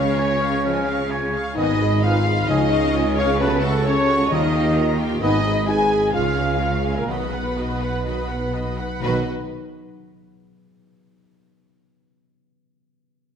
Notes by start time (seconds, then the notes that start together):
Already playing: C#2 C#3 C#4 G#4 C#5 F5 C#6
0.02 F4
0.17 F4 C#5 G#5
0.40 G#4 F5 C#6
0.49 G#4
0.63 F3 G#3 F4 C#5 F5 G#5
0.80 C#4
0.86 G#4 F5 C#6
0.96 F4
1.10 F4 G#4 C#5 G#5
1.27 C#5
1.33 G#4 F5 C#6
1.55 G#1 G#2 D#3 B3 D#4 B4 D#5 G#5
1.72 B3
1.79 G#4 D#5 B5
1.87 D#4
2.01 D#4 F4 G#4 B4 F5 G#5
2.18 B4
2.25 G#4 D#5 B5
2.34 G#4
2.48 C#2 C#3 F3 G#3 D#4 F4 C#5 D#5 G#5
2.71 G#4 F5 C#6
2.79 F4
2.95 F4 G#4 C#5 G#5
3.11 C#5
3.16 C#4 G#4 C#5 F5 C#6
3.26 G#4
3.38 C#3 F#3 A3 B3 A4 B4 C#5 A5
3.55 C#4
3.61 A3 F#4 A4 F#5 C#6
3.71 F#4
3.84 C#4 A4 C#5 A5
4.08 F#4 A4 F#5 C#6
4.16 A4
4.29 D#2 D#3 F3 G3 D#4 F4 A#4 D#5 A#5
4.46 A#3
4.54 F4 G4 F5 G5
4.62 F4
4.78 F4 G4 A#4 D#5 A#5
4.92 A#4
4.99 F4 G4 F5 G5
5.07 G4
5.21 G#1 G#2 D#3 B3 D#4 B4 D#5 G#5
5.38 B3
5.46 G#4 D#5 B5
5.53 D#4
5.67 D#4 G#4 B4 G#5
5.84 B4
5.91 G#4 D#5 B5
5.99 G#4
6.12 C#2 C#3 G#3 F4 C#5 F5
6.30 C#4
6.37 G#4 C#5 F5 G#5
6.45 F4
6.58 F4 C#5 F5
6.76 C#5
6.84 G#4 C#5 F5 G#5
6.96 A#3 A#4
7.07 B1 B2 D#3 F#3 B3 F#4 B4 D#5 F#5 B5
7.25 B3
7.33 B4 F#5 B5
7.42 D#4
7.57 F#4 D#5 F#5 B5
7.74 B4
7.81 B4 F#5 B5
7.90 F#4
8.05 D#3 F#3 F#4 D#5 F#5 B5
8.23 B3
8.29 B4 F#5 B5
8.39 D#4
8.53 F#4 D#5 F#5 B5
8.71 B4
8.77 B4 F#5 B5
8.88 F#4
8.99 B1 B2 B3 F#4 B4 D#5
9.03 D#3 F#3 B3 D#4
9.07 F#4